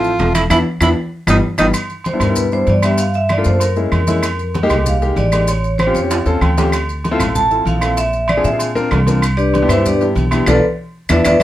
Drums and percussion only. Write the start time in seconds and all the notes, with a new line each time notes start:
0.04 high conga, maracas
0.19 high conga, high timbale, low timbale, maracas
0.35 high conga, high timbale, claves, maracas
0.50 high conga, high timbale, claves, maracas
0.81 high conga, high timbale, claves, maracas
1.27 high conga, high timbale, claves, maracas
1.58 high conga, high timbale, claves, maracas
1.74 high conga, low agogo, claves, maracas
1.90 high conga, maracas
2.04 high conga, low agogo, maracas
2.20 high conga, low conga, low agogo, claves, maracas
2.36 high conga, low conga, maracas
2.52 high conga, maracas
2.67 high conga, low agogo, maracas
2.83 low agogo, claves, maracas
2.98 high conga, low agogo, maracas
3.14 high conga, maracas
3.29 high conga, low agogo, claves, maracas
3.44 high conga, maracas
3.60 high conga, low agogo, maracas
3.76 high conga, maracas
3.92 high conga, low agogo, claves, maracas
4.07 high conga, low agogo, maracas
4.23 low agogo, claves, maracas
4.39 high conga, maracas
4.54 high conga, low agogo, maracas
4.70 high conga, low conga, low agogo, claves, maracas
4.86 high conga, low conga, maracas
5.02 maracas
5.17 high conga, low agogo, maracas
5.32 low agogo, claves, maracas
5.48 high conga, low agogo, maracas
5.64 high conga, maracas
5.79 high conga, low agogo, claves, maracas
5.95 high conga, maracas
6.10 high conga, high timbale, low agogo, maracas
6.26 high conga, maracas
6.41 high conga, low agogo, claves, maracas
6.58 high conga, low timbale, low agogo, maracas
6.72 high conga, low agogo, claves, maracas
6.89 high conga, maracas
7.04 high conga, low agogo, maracas
7.20 high conga, low conga, low agogo, claves, maracas
7.35 high conga, low conga, maracas
7.51 high conga, maracas
7.66 high conga, low agogo, maracas
7.81 low agogo, claves, maracas
7.97 high conga, low agogo, maracas
8.13 high conga, maracas
8.28 high conga, low agogo, claves, maracas
8.44 high conga, maracas
8.59 high conga, low agogo, maracas
8.76 high conga, maracas
8.91 high conga, low timbale, low agogo, claves, maracas
9.07 high conga, low agogo, maracas
9.22 high conga, low agogo, claves, maracas
9.38 high conga, maracas
9.54 high conga, low agogo, maracas
9.69 high conga, low conga, low agogo, claves, maracas
9.86 high conga, low conga, maracas
10.01 high conga, maracas
10.16 high conga, low agogo, maracas
10.31 high conga, low agogo, claves, maracas
10.46 high conga, high timbale, claves, maracas
11.09 high conga, high timbale, claves, maracas
11.25 high conga, high timbale, claves, maracas
11.40 high conga